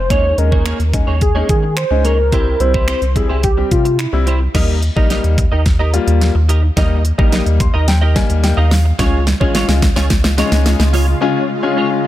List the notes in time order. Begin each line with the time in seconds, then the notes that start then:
Already playing: F1 C5
0.10 D#2 G#3 A#3 C#4 D#4 G#4 C#5, kick, closed hi-hat
0.38 D#2 G#3 C#4 D#4 A#4, muted clean electric guitar stroke, closed hi-hat
0.52 A#3 D#4 G#4 C#5, kick
0.65 A#3 D#4 G#4 C#5, finger snap, closed hi-hat
0.79 D#2, muted clean electric guitar stroke, closed hi-hat
0.93 G#3 C#4 D#4, muted clean electric guitar stroke, kick, closed hi-hat
1.07 D#2 A#3 D#4 G#4 C#5
1.21 G#4, muted clean electric guitar stroke, kick, closed hi-hat
1.35 G#3 A#3 C#4 D#4 G#4 C#5
1.49 D#3 G#4, kick, closed hi-hat
1.63 muted clean electric guitar stroke
1.77 C5, finger snap, muted clean electric guitar stroke, closed hi-hat
1.91 C#2 G#3 C#4 D#4, muted clean electric guitar stroke
2.04 A#3 D#4 G#4 A#4 C#5, closed hi-hat
2.18 muted clean electric guitar stroke
2.32 C2 G3 C4 E4 G4 C5, kick, closed hi-hat
2.60 C2 G3 C4 E4 C5, muted clean electric guitar stroke, closed hi-hat
2.74 C4 E4 G4 C5, kick
2.88 C4 E4 G4 C5, finger snap, closed hi-hat
3.02 C2, muted clean electric guitar stroke, closed hi-hat
3.16 G3 C4 E4 G#4, muted clean electric guitar stroke, kick, closed hi-hat
3.29 C2 C4 E4 G4 C5
3.43 G4, muted clean electric guitar stroke, kick, closed hi-hat
3.57 G3 C4 G4, muted clean electric guitar stroke
3.71 C3 F4, kick, closed hi-hat
3.85 muted clean electric guitar stroke, closed hi-hat
3.99 E4, finger snap, muted clean electric guitar stroke, closed hi-hat
4.13 C2 G3 C4 E4, muted clean electric guitar stroke
4.27 C4 E4 G4 C5, closed hi-hat
4.41 muted clean electric guitar stroke
4.54 D#2 G3 A#3 D#4 G4 A#4 D#5, kick, snare, closed hi-hat, crash
4.82 muted clean electric guitar stroke, closed hi-hat
4.96 A#1 G3 A#3 D#4 G4 A#4 D#5, kick
5.10 D#4 G4 A#4 D#5, snare, closed hi-hat
5.24 D#2, muted clean electric guitar stroke, closed hi-hat
5.38 muted clean electric guitar stroke, kick, closed hi-hat
5.52 D#2 D#4 G4 A#4 D#5
5.66 muted clean electric guitar stroke, kick, snare, closed hi-hat
5.79 D#4 G4 A#4 D#5
5.93 G3 A#3 F4, muted clean electric guitar stroke, closed hi-hat
6.07 D#2, muted clean electric guitar stroke, closed hi-hat
6.21 muted clean electric guitar stroke, snare, closed hi-hat
6.35 D#2, muted clean electric guitar stroke
6.49 D#4 G4 A#4 D#5, closed hi-hat
6.63 muted clean electric guitar stroke
6.77 D#2 G3 A#3 D#4 G4 A#4 D#5, kick, snare, closed hi-hat
7.04 muted clean electric guitar stroke, closed hi-hat
7.18 A#1 G3 A#3 D#4 G4 A#4 D#5, kick
7.32 D#4 G4 A#4 D#5, snare, closed hi-hat
7.46 D#2, muted clean electric guitar stroke, closed hi-hat
7.60 C6, muted clean electric guitar stroke, kick, closed hi-hat
7.74 D#2 D#4 G4 A#4 D#5 A#5
7.88 G5, muted clean electric guitar stroke, snare, closed hi-hat
8.01 D#4 G4 A#4 D#5
8.15 G3 A#3 D#4 G#5, muted clean electric guitar stroke, kick, snare, closed hi-hat
8.29 D#2, muted clean electric guitar stroke, closed hi-hat
8.43 G5, muted clean electric guitar stroke, snare, closed hi-hat
8.57 D#2 D#4 G4 A#4 D#5 F5
8.71 muted clean electric guitar stroke, snare, open hi-hat
8.85 muted clean electric guitar stroke
8.99 C#2 C#3 G#3 C#4 F4 G#4 C#5, kick, snare, closed hi-hat
9.27 muted clean electric guitar stroke, snare, closed hi-hat
9.40 G#1 G#3 C#4 F4 G#4 C#5, kick
9.54 C#4 F4 G#4 C#5, snare, closed hi-hat
9.68 C#2, muted clean electric guitar stroke, snare, closed hi-hat
9.82 muted clean electric guitar stroke, kick, snare, closed hi-hat
9.96 C#2 C#4 F4 G#4 C#5, snare
10.10 muted clean electric guitar stroke, kick, snare, closed hi-hat
10.24 muted clean electric guitar stroke, snare
10.38 G#3 C#4 D#4 F4 G#4 C#5, snare, closed hi-hat
10.52 C#2, muted clean electric guitar stroke, snare, closed hi-hat
10.66 muted clean electric guitar stroke, snare, closed hi-hat
10.79 C#2, muted clean electric guitar stroke, snare
10.93 C#4 F4 G#4 C#5, open hi-hat
11.07 muted clean electric guitar stroke
11.21 G#3 C#4 F4 G#4 C#5
11.49 muted clean electric guitar stroke
11.63 G#3 C#4 F4 G#4 C#5
11.77 C#4 F4 G#4 C#5
11.91 muted clean electric guitar stroke